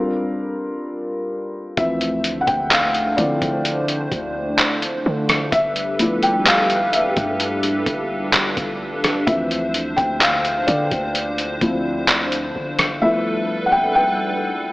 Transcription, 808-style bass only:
1.78 2.45 D2 loud
2.48 3.15 D2 loud
3.18 4.08 D3 loud
4.12 4.57 D2 loud
5.06 5.51 D3 loud
5.53 7.13 G1 loud
7.17 7.84 G2 loud
7.87 8.32 G1 loud
8.34 8.56 G1 loud
8.57 9.25 G1 loud
9.28 9.95 D2 loud
9.98 10.65 D2 loud
10.68 10.91 D3 loud
10.92 11.59 D2 loud
11.62 12.52 D2 loud
12.56 13.01 G1 loud

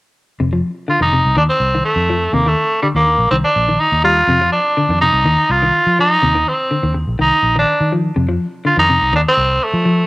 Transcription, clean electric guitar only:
0.40 0.49 C3 medium
0.53 0.70 F3 medium
0.88 0.97 D3 medium
1.01 1.09 D#3 medium
1.13 1.30 C3 medium
1.37 1.54 D#3 medium
1.75 1.92 D#3 medium
2.10 2.27 F3 medium
2.34 2.43 C3 medium
2.46 2.64 D#3 medium
2.83 2.92 D3 medium
2.96 3.04 D#3 medium
3.32 3.49 D#3 medium
3.69 3.85 D#3 medium
4.04 4.21 G3 medium
4.29 4.38 C3 medium
4.41 4.58 F3 medium
4.77 4.86 D3 medium
4.90 4.98 D#3 medium
5.02 5.19 C3 medium
5.25 5.42 D#3 medium
5.62 5.79 D#3 medium
5.99 6.16 F3 medium
6.22 6.31 C3 medium
6.35 6.52 D#3 medium
6.71 6.80 D3 medium
6.83 6.92 D#3 medium
6.94 muted clean electric guitar stroke medium
7.19 7.36 D#3 medium
7.56 7.73 D#3 medium
7.92 8.09 F3 medium
8.16 8.25 C3 medium
8.29 8.46 F3 medium
8.65 8.74 D3 medium
8.77 8.85 D#3 medium
8.89 9.06 C3 medium
9.13 9.30 D#3 medium
9.85 10.02 F3 medium

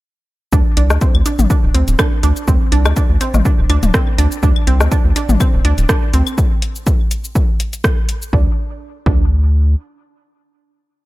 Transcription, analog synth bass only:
0.53 0.62 D2 loud
0.77 0.92 C2 medium
0.90 0.98 D2 medium
1.15 1.22 D2 loud
1.39 1.47 A1 loud
1.63 1.71 D1 medium
1.74 1.84 D2 medium
1.88 1.96 D1 medium
2.23 2.33 D2 loud
2.48 2.57 D2 loud
2.72 2.87 C2 medium
2.85 2.93 D2 medium
3.10 3.18 D2 loud
3.34 3.42 A1 loud
3.58 3.66 D1 medium
3.69 3.79 D2 medium
3.83 3.91 D1 medium
4.18 4.28 D2 loud
4.43 4.52 D2 loud
4.67 4.82 C2 medium
4.80 4.88 D2 medium
5.05 5.13 D2 loud
5.29 5.37 A1 loud
5.54 5.61 D1 medium
5.65 5.74 D2 medium
5.78 5.86 D1 medium
6.13 6.23 D2 loud
8.33 8.47 D2 loud
9.06 9.75 D2 loud

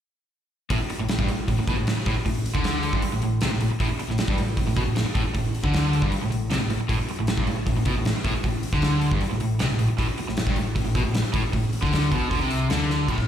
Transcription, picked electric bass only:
0.70 0.79 A1 medium
0.90 muted picked electric bass stroke soft
1.00 1.08 A1 medium
1.09 1.18 A1 medium
1.19 1.27 G1 loud
1.28 1.46 A1 medium
1.48 1.57 A1 medium
1.57 1.67 A1 medium
1.68 1.76 B1 medium
1.76 1.86 A1 medium
1.86 1.96 A1 medium
1.96 muted picked electric bass stroke soft
2.06 2.15 A1 loud
2.16 muted picked electric bass stroke soft
2.26 2.44 A1 medium
2.55 2.91 D2 medium
2.93 3.02 G1 medium
3.03 muted picked electric bass stroke soft
3.12 3.22 A1 medium
3.22 3.40 A1 medium
3.41 3.51 C2 loud
3.51 3.60 A1 medium
3.61 3.70 A1 medium
3.71 muted picked electric bass stroke soft
3.80 3.89 A1 loud
3.91 muted picked electric bass stroke soft
4.00 muted picked electric bass stroke soft
4.09 4.18 A1 medium
4.19 4.27 A1 medium
4.28 4.37 G1 loud
4.38 4.56 A1 medium
4.57 4.67 A1 medium
4.67 4.76 A1 medium
4.76 4.86 B1 medium
4.87 4.96 A1 medium
4.97 5.06 A1 medium
5.06 muted picked electric bass stroke soft
5.15 5.25 A1 medium
5.26 muted picked electric bass stroke soft
5.34 5.53 A1 medium
5.63 6.00 D2 medium
6.02 6.12 G1 medium
6.13 muted picked electric bass stroke soft
6.22 6.31 A1 medium
6.32 6.50 A1 medium
6.51 6.60 C2 medium
6.61 6.69 A1 medium
6.70 6.79 A1 medium
6.80 muted picked electric bass stroke soft
6.89 6.99 A1 loud
7.09 muted picked electric bass stroke soft
7.19 7.27 A1 medium
7.28 7.37 A1 medium
7.37 7.46 G1 loud
7.47 7.65 A1 medium
7.67 7.76 A1 medium
7.76 7.85 A1 medium
7.86 7.95 B1 medium
7.96 8.05 A1 medium
8.06 8.14 A1 medium
8.15 muted picked electric bass stroke soft
8.24 8.34 A1 loud
8.35 muted picked electric bass stroke soft
8.44 8.62 A1 medium
8.73 9.09 D2 medium
9.12 9.21 G1 loud
9.22 muted picked electric bass stroke soft
9.32 9.41 A1 medium
9.42 9.59 A1 medium
9.61 9.70 C2 medium
9.70 9.79 A1 medium
9.80 9.89 A1 medium
9.90 muted picked electric bass stroke soft
9.99 10.08 A1 loud
10.19 muted picked electric bass stroke soft
10.28 10.37 A1 medium
10.38 10.46 A1 medium
10.47 10.56 G1 loud
10.57 10.75 A1 medium
10.76 10.85 A1 medium
10.86 10.94 A1 medium
10.95 11.04 B1 medium
11.06 11.15 A1 medium
11.16 11.24 A1 medium
11.25 muted picked electric bass stroke soft
11.34 11.43 A1 loud
11.44 muted picked electric bass stroke soft
11.53 11.71 A1 medium
11.82 12.10 D2 medium
12.12 12.30 B1 loud
12.31 12.40 D2 medium
12.42 12.68 C2 medium
12.70 13.06 D2 medium
13.08 13.17 A1 medium
13.18 13.27 A1 medium

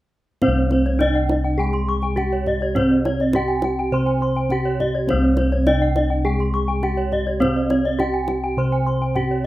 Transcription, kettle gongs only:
0.42 2.13 C4 soft
0.47 3.90 C2 medium
1.01 1.09 C#4 soft
2.17 2.25 C#4 soft
2.75 4.46 C4 medium
3.34 3.42 C#4 soft
3.92 5.63 C3 medium
4.49 4.57 C#4 soft
5.08 6.79 C4 medium
5.12 8.56 C2 medium
5.67 5.75 C#4 soft
6.82 6.90 C#4 soft
7.41 9.12 C4 medium
7.99 8.07 C#4 soft
8.57 9.46 C3 medium
9.16 9.24 C#4 soft

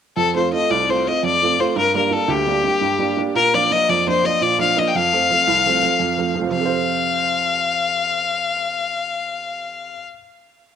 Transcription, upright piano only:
0.17 0.51 F2 medium
0.35 0.51 A3 soft
0.35 0.52 C4 soft
0.35 0.52 F4 soft
0.53 0.81 A3 soft
0.53 0.81 C4 soft
0.53 0.81 F4 soft
0.70 1.05 C2 medium
0.89 1.05 A3 soft
0.89 1.05 C4 soft
0.89 1.06 F4 soft
1.06 1.35 A3 soft
1.06 1.35 C4 soft
1.06 1.35 F4 soft
1.23 1.58 F2 medium
1.42 1.57 A3 soft
1.42 1.57 C4 soft
1.42 1.58 F4 soft
1.59 1.72 A3 soft
1.59 1.72 C4 soft
1.59 1.73 F4 soft
1.76 2.10 G2 medium
1.94 2.09 G3 soft
1.94 2.09 A#3 soft
1.94 2.09 D4 soft
2.11 2.40 G3 soft
2.11 2.40 A#3 soft
2.11 2.40 D4 soft
2.28 2.63 D2 medium
2.47 2.62 G3 soft
2.47 2.63 A#3 soft
2.47 2.63 D4 medium
2.63 2.93 G3 soft
2.63 2.93 A#3 soft
2.63 2.93 D4 soft
2.81 3.16 G2 medium
2.99 3.15 G3 soft
2.99 3.15 A#3 soft
2.99 3.16 D4 medium
3.16 3.31 G3 soft
3.16 3.31 A#3 soft
3.16 3.31 D4 medium
3.35 3.70 A#2 medium
3.54 3.70 F3 soft
3.54 3.69 A#3 soft
3.54 3.70 D4 medium
3.71 4.00 F3 soft
3.71 4.00 A#3 soft
3.71 4.00 D4 soft
3.89 4.23 F2 medium
4.07 4.22 F3 soft
4.07 4.23 A#3 soft
4.07 4.23 D4 soft
4.23 4.52 F3 soft
4.23 4.53 A#3 soft
4.23 4.53 D4 soft
4.41 4.76 A#2 medium
4.59 4.75 F3 soft
4.59 4.75 A#3 soft
4.59 4.76 D4 soft
4.76 4.90 F3 soft
4.76 4.91 A#3 soft
4.76 4.91 D4 medium
4.95 5.29 F2 medium
5.13 5.29 F3 medium
5.13 5.29 A3 soft
5.13 5.30 C4 medium
5.31 5.59 F3 soft
5.31 5.59 A3 soft
5.31 5.60 C4 soft
5.48 5.82 C2 medium
5.66 5.81 F3 soft
5.66 5.81 A3 soft
5.66 5.82 C4 medium
5.83 6.11 F3 soft
5.83 6.12 A3 soft
5.83 6.12 C4 soft
5.99 6.35 F2 medium
6.18 6.34 F3 soft
6.18 6.34 A3 soft
6.18 6.35 C4 soft
6.35 6.49 F3 soft
6.35 6.50 A3 soft
6.35 6.50 C4 soft
6.42 9.94 F2 medium
6.46 9.98 C3 soft
6.51 10.03 F3 soft
6.56 10.08 C4 soft
6.61 10.13 A4 soft
6.65 10.17 C5 medium

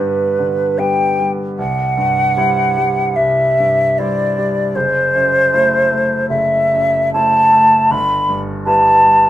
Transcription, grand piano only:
0.00 1.61 G2 soft
0.00 0.39 D3 soft
0.00 0.78 G3 soft
0.00 0.78 B3 soft
0.00 0.79 B4 soft
0.39 1.03 D3 soft
0.78 1.14 G3 soft
0.78 1.14 B3 soft
0.78 1.14 B4 soft
1.20 1.58 G3 soft
1.59 3.13 C2 soft
1.98 2.60 G2 soft
2.37 2.72 G3 soft
2.37 2.73 E4 soft
2.37 2.73 C5 soft
2.78 3.42 G3 soft
3.17 4.71 C2 soft
3.59 4.21 G2 soft
3.99 4.33 G3 soft
3.99 4.33 E4 soft
3.99 4.34 C5 soft
4.38 4.76 G3 soft
4.76 6.26 F#1 soft
5.15 5.76 F#2 soft
5.53 5.87 A3 soft
5.53 5.88 E4 soft
5.53 5.88 C5 soft
5.91 6.54 A3 soft
6.30 7.88 F#1 soft
6.73 7.38 F#2 soft
7.14 7.49 A3 soft
7.14 7.50 E4 soft
7.14 7.50 C5 soft
7.53 7.91 A3 soft
7.91 9.29 G1 soft
8.29 8.89 G2 soft
8.66 9.00 G3 soft
8.66 9.00 E4 soft
8.66 9.00 B4 soft
9.04 9.29 G3 soft

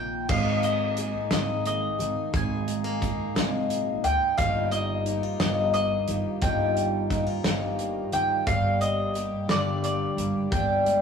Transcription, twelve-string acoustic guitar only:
0.28 0.95 G#3 medium
0.28 0.97 A#3 medium
0.28 0.98 D#4 medium
0.28 0.97 G#4 medium
0.96 1.31 G#3 medium
0.96 1.31 A#3 medium
0.96 1.30 D#4 medium
0.96 1.30 G#4 medium
1.31 2.00 G#3 soft
1.31 2.01 A#3 soft
1.31 2.00 D#4 medium
1.31 1.97 G#4 medium
1.99 2.32 A#3 soft
1.99 2.33 D#4 soft
1.99 2.33 G#4 medium
2.33 2.99 G#3 medium
2.33 3.01 A#3 medium
2.33 3.02 D#4 medium
2.33 3.02 G#4 medium
3.00 3.35 G#3 medium
3.00 3.35 A#3 medium
3.00 3.35 D#4 medium
3.00 3.34 G#4 medium
3.35 4.04 G#3 medium
3.35 4.06 A#3 medium
3.35 4.05 D#4 medium
3.35 4.03 G#4 medium
4.04 4.39 A#3 soft
4.04 4.39 D#4 medium
4.04 4.38 G#4 medium
4.39 5.07 G2 medium
4.39 5.07 D#3 medium
4.39 5.05 F3 medium
4.39 5.07 A#3 medium
4.39 5.07 D#4 medium
4.39 5.08 G4 medium
5.06 5.40 F3 medium
5.06 5.40 A#3 medium
5.06 5.39 D#4 medium
5.06 5.39 G4 medium
5.40 6.09 G2 medium
5.40 6.09 D#3 soft
5.40 6.09 F3 soft
5.40 6.09 A#3 medium
5.40 6.07 D#4 medium
5.40 6.07 G4 medium
6.07 6.41 F3 soft
6.07 6.41 A#3 soft
6.07 6.41 D#4 soft
6.07 6.42 G4 medium
6.41 7.10 G2 medium
6.41 7.10 D#3 medium
6.41 7.09 F3 medium
6.41 7.11 A#3 medium
6.41 7.11 D#4 medium
6.41 7.12 G4 medium
7.10 7.44 F3 medium
7.10 7.43 A#3 medium
7.10 7.43 D#4 medium
7.10 7.43 G4 medium
7.44 8.13 G2 medium
7.44 8.13 D#3 medium
7.44 8.13 F3 medium
7.44 8.13 A#3 medium
7.44 8.12 D#4 medium
7.44 8.12 G4 medium
8.12 8.47 F3 soft
8.12 8.47 A#3 soft
8.12 8.47 D#4 soft
8.12 8.47 G4 medium
8.47 9.15 G2 medium
8.47 9.15 D3 medium
8.47 9.13 G3 medium
8.47 9.13 A#3 medium
8.47 9.15 G4 medium
9.14 9.48 G3 medium
9.14 9.49 A#3 medium
9.14 9.47 G4 medium
9.48 10.18 G2 medium
9.48 10.18 D3 medium
9.48 10.18 G3 medium
9.48 10.17 A#3 medium
9.48 10.17 D4 medium
9.48 10.16 G4 medium
10.17 10.51 G3 soft
10.17 10.51 A#3 soft
10.17 10.52 D4 soft
10.17 10.51 G4 medium
10.52 11.02 G2 medium
10.52 11.02 D3 medium
10.52 11.02 G3 medium
10.52 11.02 A#3 medium
10.52 11.02 D4 medium
10.52 11.02 G4 medium

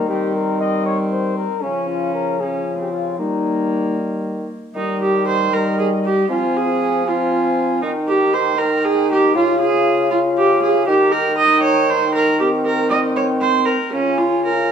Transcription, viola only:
0.10 1.60 C4 medium
1.63 2.39 C#4 medium
2.41 2.77 C#4 medium
2.78 3.20 C4 soft
3.18 4.55 A#3 medium
4.75 4.99 D#4 medium
5.02 5.26 G4 medium
5.27 5.55 C5 medium
5.53 5.78 A#4 medium
5.79 5.87 G#4 medium
6.05 6.29 G4 medium
6.30 6.58 F4 medium
6.56 7.09 G#4 medium
7.07 7.81 F4 medium
7.82 7.90 D#4 medium
8.08 8.35 G4 medium
8.33 8.60 C5 medium
8.58 8.86 A#4 medium
8.84 9.10 G#4 loud
9.12 9.35 G4 loud
9.36 9.59 F4 loud
9.60 10.10 G#4 loud
10.11 10.19 F4 medium
10.37 10.62 G4 loud
10.62 10.87 G#4 loud
10.87 11.13 G4 loud
11.11 11.37 A#4 medium
11.37 11.62 D#5 loud
11.63 11.91 C#5 loud
11.89 12.14 C5 loud
12.14 12.39 A#4 medium
12.40 12.48 G4 medium
12.65 12.89 A#4 medium
12.90 12.98 D#5 medium
13.16 13.24 C#5 medium
13.41 13.67 C5 loud
13.65 13.92 A#4 medium
13.93 14.19 C#4 medium
14.18 14.44 F4 medium
14.45 14.72 A#4 medium

